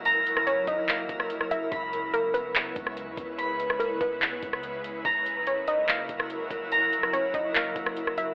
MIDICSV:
0, 0, Header, 1, 7, 480
1, 0, Start_track
1, 0, Tempo, 416667
1, 59, Time_signature, 4, 2, 24, 8
1, 9608, End_track
2, 0, Start_track
2, 0, Title_t, "Synth pluck"
2, 0, Program_c, 0, 84
2, 539, Note_on_c, 0, 73, 88
2, 767, Note_off_c, 0, 73, 0
2, 780, Note_on_c, 0, 75, 84
2, 1693, Note_off_c, 0, 75, 0
2, 1742, Note_on_c, 0, 76, 88
2, 1968, Note_off_c, 0, 76, 0
2, 2459, Note_on_c, 0, 70, 89
2, 2687, Note_off_c, 0, 70, 0
2, 2694, Note_on_c, 0, 71, 84
2, 2924, Note_off_c, 0, 71, 0
2, 4372, Note_on_c, 0, 70, 82
2, 4603, Note_off_c, 0, 70, 0
2, 4615, Note_on_c, 0, 71, 84
2, 4845, Note_off_c, 0, 71, 0
2, 6305, Note_on_c, 0, 73, 81
2, 6530, Note_off_c, 0, 73, 0
2, 6542, Note_on_c, 0, 75, 89
2, 6768, Note_off_c, 0, 75, 0
2, 8217, Note_on_c, 0, 73, 87
2, 8446, Note_off_c, 0, 73, 0
2, 8461, Note_on_c, 0, 75, 80
2, 9373, Note_off_c, 0, 75, 0
2, 9420, Note_on_c, 0, 76, 84
2, 9608, Note_off_c, 0, 76, 0
2, 9608, End_track
3, 0, Start_track
3, 0, Title_t, "Ambient pad"
3, 0, Program_c, 1, 92
3, 0, Note_on_c, 1, 49, 83
3, 0, Note_on_c, 1, 54, 75
3, 0, Note_on_c, 1, 64, 75
3, 0, Note_on_c, 1, 70, 91
3, 1940, Note_off_c, 1, 54, 0
3, 1940, Note_off_c, 1, 70, 0
3, 1981, Note_on_c, 1, 56, 77
3, 1982, Note_on_c, 1, 71, 87
3, 5774, Note_off_c, 1, 64, 0
3, 5781, Note_off_c, 1, 56, 0
3, 5782, Note_off_c, 1, 71, 0
3, 5819, Note_on_c, 1, 54, 78
3, 5819, Note_on_c, 1, 70, 90
3, 5820, Note_on_c, 1, 64, 79
3, 9608, Note_off_c, 1, 49, 0
3, 9608, Note_off_c, 1, 54, 0
3, 9608, Note_off_c, 1, 64, 0
3, 9608, Note_off_c, 1, 70, 0
3, 9608, End_track
4, 0, Start_track
4, 0, Title_t, "Synth texture"
4, 0, Program_c, 2, 99
4, 0, Note_on_c, 2, 54, 84
4, 0, Note_on_c, 2, 64, 75
4, 0, Note_on_c, 2, 70, 94
4, 1939, Note_off_c, 2, 70, 0
4, 1940, Note_off_c, 2, 54, 0
4, 1981, Note_on_c, 2, 73, 92
4, 1982, Note_on_c, 2, 59, 81
4, 5772, Note_off_c, 2, 64, 0
4, 5781, Note_off_c, 2, 73, 0
4, 5782, Note_off_c, 2, 59, 0
4, 5815, Note_on_c, 2, 64, 76
4, 5815, Note_on_c, 2, 70, 93
4, 5817, Note_on_c, 2, 54, 83
4, 9608, Note_off_c, 2, 54, 0
4, 9608, Note_off_c, 2, 64, 0
4, 9608, Note_off_c, 2, 70, 0
4, 9608, End_track
5, 0, Start_track
5, 0, Title_t, "Harp"
5, 0, Program_c, 3, 46
5, 0, Note_on_c, 3, 58, 77
5, 64, Note_on_c, 3, 82, 102
5, 1019, Note_off_c, 3, 58, 0
5, 1024, Note_on_c, 3, 58, 72
5, 1676, Note_off_c, 3, 82, 0
5, 1975, Note_on_c, 3, 83, 108
5, 2044, Note_off_c, 3, 58, 0
5, 2940, Note_on_c, 3, 59, 72
5, 3533, Note_off_c, 3, 83, 0
5, 3897, Note_on_c, 3, 83, 103
5, 4849, Note_off_c, 3, 59, 0
5, 4854, Note_on_c, 3, 59, 82
5, 5455, Note_off_c, 3, 83, 0
5, 5819, Note_on_c, 3, 82, 104
5, 5888, Note_off_c, 3, 59, 0
5, 6777, Note_on_c, 3, 58, 81
5, 7431, Note_off_c, 3, 82, 0
5, 7743, Note_on_c, 3, 82, 105
5, 8698, Note_off_c, 3, 58, 0
5, 8703, Note_on_c, 3, 58, 75
5, 9355, Note_off_c, 3, 82, 0
5, 9608, Note_off_c, 3, 58, 0
5, 9608, End_track
6, 0, Start_track
6, 0, Title_t, "808-style bass"
6, 0, Program_c, 4, 38
6, 0, Note_on_c, 4, 30, 107
6, 739, Note_off_c, 4, 30, 0
6, 778, Note_on_c, 4, 30, 111
6, 1139, Note_on_c, 4, 37, 97
6, 1156, Note_off_c, 4, 30, 0
6, 1253, Note_off_c, 4, 37, 0
6, 1260, Note_on_c, 4, 30, 100
6, 1950, Note_off_c, 4, 30, 0
6, 1980, Note_on_c, 4, 37, 111
6, 3133, Note_off_c, 4, 37, 0
6, 3180, Note_on_c, 4, 37, 104
6, 3539, Note_on_c, 4, 40, 100
6, 3556, Note_off_c, 4, 37, 0
6, 3649, Note_off_c, 4, 40, 0
6, 3656, Note_on_c, 4, 37, 110
6, 4579, Note_off_c, 4, 37, 0
6, 4617, Note_on_c, 4, 37, 109
6, 4978, Note_on_c, 4, 40, 98
6, 4996, Note_off_c, 4, 37, 0
6, 5093, Note_off_c, 4, 40, 0
6, 5100, Note_on_c, 4, 37, 103
6, 5790, Note_off_c, 4, 37, 0
6, 5818, Note_on_c, 4, 30, 114
6, 6972, Note_off_c, 4, 30, 0
6, 7020, Note_on_c, 4, 30, 101
6, 7480, Note_off_c, 4, 30, 0
6, 7496, Note_on_c, 4, 30, 108
6, 8419, Note_off_c, 4, 30, 0
6, 8456, Note_on_c, 4, 30, 111
6, 8818, Note_on_c, 4, 37, 95
6, 8835, Note_off_c, 4, 30, 0
6, 8932, Note_off_c, 4, 37, 0
6, 8939, Note_on_c, 4, 30, 109
6, 9608, Note_off_c, 4, 30, 0
6, 9608, End_track
7, 0, Start_track
7, 0, Title_t, "Drums"
7, 61, Note_on_c, 9, 42, 78
7, 176, Note_off_c, 9, 42, 0
7, 304, Note_on_c, 9, 42, 76
7, 419, Note_off_c, 9, 42, 0
7, 423, Note_on_c, 9, 37, 98
7, 538, Note_off_c, 9, 37, 0
7, 540, Note_on_c, 9, 42, 81
7, 655, Note_off_c, 9, 42, 0
7, 778, Note_on_c, 9, 36, 98
7, 780, Note_on_c, 9, 42, 78
7, 893, Note_off_c, 9, 36, 0
7, 896, Note_off_c, 9, 42, 0
7, 1019, Note_on_c, 9, 42, 72
7, 1023, Note_on_c, 9, 39, 110
7, 1134, Note_off_c, 9, 42, 0
7, 1138, Note_off_c, 9, 39, 0
7, 1258, Note_on_c, 9, 42, 70
7, 1260, Note_on_c, 9, 36, 90
7, 1373, Note_off_c, 9, 42, 0
7, 1375, Note_off_c, 9, 36, 0
7, 1380, Note_on_c, 9, 37, 95
7, 1496, Note_off_c, 9, 37, 0
7, 1498, Note_on_c, 9, 42, 75
7, 1613, Note_off_c, 9, 42, 0
7, 1621, Note_on_c, 9, 37, 86
7, 1736, Note_off_c, 9, 37, 0
7, 1741, Note_on_c, 9, 42, 83
7, 1856, Note_off_c, 9, 42, 0
7, 1980, Note_on_c, 9, 36, 125
7, 1981, Note_on_c, 9, 42, 76
7, 2095, Note_off_c, 9, 36, 0
7, 2096, Note_off_c, 9, 42, 0
7, 2224, Note_on_c, 9, 42, 75
7, 2339, Note_off_c, 9, 42, 0
7, 2461, Note_on_c, 9, 42, 84
7, 2576, Note_off_c, 9, 42, 0
7, 2700, Note_on_c, 9, 42, 76
7, 2815, Note_off_c, 9, 42, 0
7, 2939, Note_on_c, 9, 42, 73
7, 2943, Note_on_c, 9, 39, 115
7, 3054, Note_off_c, 9, 42, 0
7, 3058, Note_off_c, 9, 39, 0
7, 3178, Note_on_c, 9, 42, 70
7, 3180, Note_on_c, 9, 36, 91
7, 3294, Note_off_c, 9, 42, 0
7, 3295, Note_off_c, 9, 36, 0
7, 3301, Note_on_c, 9, 37, 92
7, 3416, Note_off_c, 9, 37, 0
7, 3419, Note_on_c, 9, 42, 73
7, 3534, Note_off_c, 9, 42, 0
7, 3656, Note_on_c, 9, 36, 95
7, 3660, Note_on_c, 9, 42, 80
7, 3771, Note_off_c, 9, 36, 0
7, 3776, Note_off_c, 9, 42, 0
7, 3900, Note_on_c, 9, 42, 73
7, 4015, Note_off_c, 9, 42, 0
7, 4143, Note_on_c, 9, 42, 74
7, 4258, Note_off_c, 9, 42, 0
7, 4261, Note_on_c, 9, 37, 98
7, 4377, Note_off_c, 9, 37, 0
7, 4379, Note_on_c, 9, 42, 79
7, 4495, Note_off_c, 9, 42, 0
7, 4617, Note_on_c, 9, 36, 99
7, 4619, Note_on_c, 9, 42, 76
7, 4732, Note_off_c, 9, 36, 0
7, 4734, Note_off_c, 9, 42, 0
7, 4858, Note_on_c, 9, 42, 73
7, 4862, Note_on_c, 9, 39, 112
7, 4973, Note_off_c, 9, 42, 0
7, 4977, Note_off_c, 9, 39, 0
7, 5098, Note_on_c, 9, 42, 69
7, 5099, Note_on_c, 9, 36, 87
7, 5213, Note_off_c, 9, 42, 0
7, 5215, Note_off_c, 9, 36, 0
7, 5221, Note_on_c, 9, 37, 94
7, 5336, Note_off_c, 9, 37, 0
7, 5337, Note_on_c, 9, 42, 71
7, 5453, Note_off_c, 9, 42, 0
7, 5580, Note_on_c, 9, 42, 76
7, 5695, Note_off_c, 9, 42, 0
7, 5818, Note_on_c, 9, 36, 121
7, 5819, Note_on_c, 9, 42, 76
7, 5933, Note_off_c, 9, 36, 0
7, 5934, Note_off_c, 9, 42, 0
7, 6061, Note_on_c, 9, 42, 77
7, 6177, Note_off_c, 9, 42, 0
7, 6299, Note_on_c, 9, 42, 80
7, 6414, Note_off_c, 9, 42, 0
7, 6539, Note_on_c, 9, 42, 80
7, 6654, Note_off_c, 9, 42, 0
7, 6778, Note_on_c, 9, 42, 77
7, 6782, Note_on_c, 9, 39, 116
7, 6893, Note_off_c, 9, 42, 0
7, 6897, Note_off_c, 9, 39, 0
7, 7017, Note_on_c, 9, 42, 72
7, 7019, Note_on_c, 9, 36, 85
7, 7132, Note_off_c, 9, 42, 0
7, 7135, Note_off_c, 9, 36, 0
7, 7140, Note_on_c, 9, 37, 99
7, 7255, Note_off_c, 9, 37, 0
7, 7258, Note_on_c, 9, 42, 74
7, 7373, Note_off_c, 9, 42, 0
7, 7496, Note_on_c, 9, 36, 94
7, 7500, Note_on_c, 9, 42, 80
7, 7611, Note_off_c, 9, 36, 0
7, 7615, Note_off_c, 9, 42, 0
7, 7739, Note_on_c, 9, 42, 80
7, 7854, Note_off_c, 9, 42, 0
7, 7982, Note_on_c, 9, 42, 74
7, 8097, Note_off_c, 9, 42, 0
7, 8102, Note_on_c, 9, 37, 95
7, 8217, Note_off_c, 9, 37, 0
7, 8219, Note_on_c, 9, 42, 83
7, 8334, Note_off_c, 9, 42, 0
7, 8457, Note_on_c, 9, 36, 102
7, 8459, Note_on_c, 9, 42, 79
7, 8572, Note_off_c, 9, 36, 0
7, 8574, Note_off_c, 9, 42, 0
7, 8698, Note_on_c, 9, 42, 75
7, 8702, Note_on_c, 9, 39, 116
7, 8813, Note_off_c, 9, 42, 0
7, 8817, Note_off_c, 9, 39, 0
7, 8938, Note_on_c, 9, 42, 71
7, 8939, Note_on_c, 9, 36, 90
7, 9053, Note_off_c, 9, 42, 0
7, 9054, Note_off_c, 9, 36, 0
7, 9060, Note_on_c, 9, 37, 96
7, 9175, Note_off_c, 9, 37, 0
7, 9177, Note_on_c, 9, 42, 73
7, 9292, Note_off_c, 9, 42, 0
7, 9300, Note_on_c, 9, 37, 88
7, 9416, Note_off_c, 9, 37, 0
7, 9419, Note_on_c, 9, 42, 78
7, 9534, Note_off_c, 9, 42, 0
7, 9608, End_track
0, 0, End_of_file